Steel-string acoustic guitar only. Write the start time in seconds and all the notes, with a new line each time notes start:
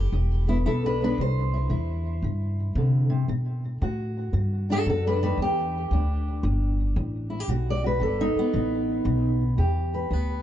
Already playing: E3 G3 G4
0.13 E2
0.48 B3 E4 A4
0.66 E2 E4 A4
0.86 D4 B4
1.02 B3 D4 B4
1.18 C3 C5
1.54 E4
1.70 C3 E4
2.24 C3
2.77 D3
3.10 C3
3.29 B2
3.82 B2 F#4
4.34 B2
4.70 D4 F#4 A4
4.88 B2 F#4 A4
5.07 D4 B4
5.23 D#3 D4 B4
5.39 E2 G4
5.93 E2 D4
6.45 E2
6.96 E2
7.30 E4
7.40 G4
7.49 B2 F#4
7.70 D5
7.84 F#4 B4
8.00 B2 A4
8.21 D#4
8.39 B3
8.53 B2
9.05 B2
9.58 E2 G4
9.94 B4
10.12 E2 B3